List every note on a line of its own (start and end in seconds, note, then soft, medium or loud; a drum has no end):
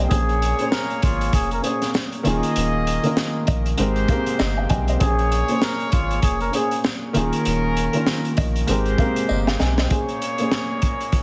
0.00 0.13 G#2 medium
0.00 0.13 C3 medium
0.00 0.13 G#3 medium
0.00 0.09 A#3 medium
0.00 0.14 C4 medium
0.00 0.13 G4 medium
0.00 0.13 A#4 loud
0.00 0.10 C5 medium
0.00 0.28 D#5 medium
0.00 0.13 F5 medium
0.00 0.13 G5 medium
0.00 0.14 G#5 medium
0.08 0.53 A#1 loud
0.08 0.43 A#2 medium
0.08 0.44 A#3 medium
0.08 0.44 C#4 medium
0.08 0.68 G#4 loud
0.08 0.45 G#4 medium
0.08 0.44 C5 medium
0.08 kick loud
0.08 closed hi-hat medium
0.12 1.92 A#3 medium
0.12 1.92 G#4 medium
0.12 1.92 C#5 medium
0.29 closed hi-hat soft
0.42 closed hi-hat medium
0.59 1.34 A#2 medium
0.59 1.34 A#3 medium
0.59 1.35 C#4 medium
0.59 1.35 C5 medium
0.59 closed hi-hat medium
0.63 1.36 G#4 medium
0.71 0.99 A#4 medium
0.71 snare loud
0.71 tambourine medium
0.90 closed hi-hat soft
1.02 1.30 G#1 loud
1.02 1.31 F4 medium
1.02 kick medium
1.02 closed hi-hat medium
1.21 closed hi-hat soft
1.33 1.60 F1 loud
1.33 1.50 G#4 medium
1.33 kick medium
1.33 closed hi-hat medium
1.51 1.64 A#4 medium
1.51 closed hi-hat soft
1.62 2.24 A#2 medium
1.62 2.23 A#3 medium
1.62 2.24 C#4 medium
1.62 1.92 G#4 medium
1.62 2.26 G#4 medium
1.62 2.25 C5 medium
1.62 closed hi-hat medium
1.82 snare soft
1.82 closed hi-hat medium
1.94 snare loud
1.94 tambourine medium
2.12 closed hi-hat soft
2.23 2.41 D#1 loud
2.23 2.86 D#3 loud
2.23 2.86 A#3 medium
2.23 3.45 A#3 medium
2.23 2.86 C#4 medium
2.23 2.87 F4 medium
2.23 3.45 G#4 medium
2.23 2.87 G#4 loud
2.23 3.45 D#5 medium
2.23 closed hi-hat medium
2.43 closed hi-hat medium
2.56 2.98 D#1 loud
2.56 closed hi-hat loud
2.87 closed hi-hat medium
3.03 3.78 D#3 medium
3.03 3.78 A#3 medium
3.03 3.79 C#4 medium
3.03 3.79 F4 medium
3.03 3.80 A#4 medium
3.03 closed hi-hat medium
3.17 snare loud
3.17 tambourine medium
3.47 3.75 A#1 loud
3.47 3.76 D#5 medium
3.47 kick loud
3.47 closed hi-hat medium
3.66 closed hi-hat medium
3.78 4.05 G#1 loud
3.78 4.04 G#2 loud
3.78 4.04 G#3 medium
3.78 4.69 G#3 medium
3.78 4.04 C4 medium
3.78 4.69 G4 medium
3.78 4.05 G4 medium
3.78 4.05 A#4 loud
3.78 4.69 C5 medium
3.78 4.07 C5 medium
3.78 closed hi-hat medium
3.96 closed hi-hat soft
4.08 4.75 C3 loud
4.08 4.76 G#3 medium
4.08 4.17 A#3 medium
4.08 4.77 G4 medium
4.08 4.77 A#4 loud
4.08 4.38 F5 medium
4.08 kick loud
4.08 closed hi-hat medium
4.16 4.79 C4 medium
4.26 closed hi-hat medium
4.39 4.67 G1 medium
4.39 4.57 C5 medium
4.39 4.56 D#5 medium
4.39 snare loud
4.39 tambourine medium
4.57 4.70 F5 medium
4.57 4.68 G5 medium
4.69 4.97 B1 loud
4.69 4.87 D#5 medium
4.69 4.87 G5 medium
4.69 4.98 G#5 medium
4.69 kick medium
4.69 closed hi-hat medium
4.88 4.98 C5 medium
4.88 5.18 D#5 medium
4.88 closed hi-hat medium
4.98 5.43 A#1 loud
4.98 5.33 A#2 medium
4.98 5.33 A#3 medium
4.98 6.81 A#3 medium
4.98 5.34 C#4 medium
4.98 6.81 G#4 medium
4.98 5.59 G#4 loud
4.98 5.35 G#4 medium
4.98 5.34 C5 medium
4.98 6.81 C#5 loud
4.98 kick loud
4.98 closed hi-hat loud
5.19 closed hi-hat soft
5.32 closed hi-hat medium
5.48 6.23 A#2 medium
5.48 6.24 A#3 medium
5.48 6.25 C#4 medium
5.48 6.24 C5 medium
5.48 closed hi-hat medium
5.53 6.25 G#4 medium
5.62 5.90 A#4 medium
5.62 snare loud
5.62 tambourine medium
5.80 closed hi-hat soft
5.92 6.19 G#1 loud
5.92 6.20 F4 medium
5.92 kick loud
5.92 closed hi-hat medium
6.11 closed hi-hat soft
6.22 6.50 F1 loud
6.22 6.39 G#4 medium
6.22 kick medium
6.22 closed hi-hat medium
6.40 6.53 A#4 medium
6.40 closed hi-hat soft
6.52 7.14 A#2 medium
6.52 7.13 A#3 medium
6.52 7.14 C#4 medium
6.52 6.82 G#4 medium
6.52 7.15 G#4 medium
6.52 7.15 C5 medium
6.52 closed hi-hat medium
6.71 closed hi-hat medium
6.84 snare loud
6.84 tambourine medium
7.13 7.31 D#1 loud
7.13 7.75 D#3 loud
7.13 7.76 A#3 medium
7.13 8.35 C#4 medium
7.13 7.76 C#4 medium
7.13 7.77 F4 medium
7.13 7.77 G#4 loud
7.13 8.35 A#4 loud
7.13 closed hi-hat medium
7.33 closed hi-hat medium
7.45 7.88 D#1 loud
7.45 closed hi-hat loud
7.77 closed hi-hat medium
7.93 8.67 D#3 medium
7.93 8.68 A#3 medium
7.93 8.68 C#4 medium
7.93 8.69 F4 medium
7.93 8.69 A#4 medium
7.93 closed hi-hat medium
8.06 snare loud
8.06 tambourine medium
8.25 closed hi-hat soft
8.37 8.64 A#1 loud
8.37 8.66 D#5 medium
8.37 kick medium
8.37 closed hi-hat medium
8.56 closed hi-hat soft
8.67 8.95 G#1 loud
8.67 8.93 G#2 loud
8.67 9.58 G#3 medium
8.67 8.94 G#3 medium
8.67 8.94 C4 medium
8.67 9.58 G4 medium
8.67 8.95 G4 medium
8.67 8.95 A#4 loud
8.67 9.58 C5 medium
8.67 8.97 C5 medium
8.67 closed hi-hat medium
8.86 closed hi-hat soft
8.97 9.65 C3 medium
8.97 9.65 G#3 medium
8.97 9.07 A#3 medium
8.97 9.66 G4 medium
8.97 9.67 A#4 loud
8.97 9.28 F5 medium
8.97 kick loud
8.97 closed hi-hat medium
9.06 9.69 C4 medium
9.16 closed hi-hat medium
9.29 9.56 G1 medium
9.29 9.46 C5 medium
9.29 9.46 D#5 medium
9.29 tambourine medium
9.47 9.59 F5 medium
9.47 9.58 G5 medium
9.47 snare medium
9.59 9.87 B1 loud
9.59 9.77 D#5 medium
9.59 9.77 G5 medium
9.59 9.88 G#5 medium
9.59 snare loud
9.78 9.88 C5 medium
9.78 10.08 D#5 medium
9.78 snare loud
9.88 10.23 A#2 medium
9.88 10.23 A#3 medium
9.88 10.24 C#4 medium
9.88 10.25 G#4 medium
9.88 10.24 C5 medium
9.88 kick loud
9.88 closed hi-hat loud
9.92 11.23 A#3 medium
9.92 11.23 G#4 medium
9.92 11.23 C#5 medium
10.09 closed hi-hat soft
10.22 closed hi-hat medium
10.38 11.13 A#2 medium
10.38 11.14 A#3 medium
10.38 11.15 C#4 medium
10.38 11.14 C5 medium
10.38 closed hi-hat soft
10.42 11.15 G#4 medium
10.52 snare loud
10.82 kick medium
10.82 closed hi-hat medium
11.00 closed hi-hat soft
11.12 kick medium
11.12 closed hi-hat medium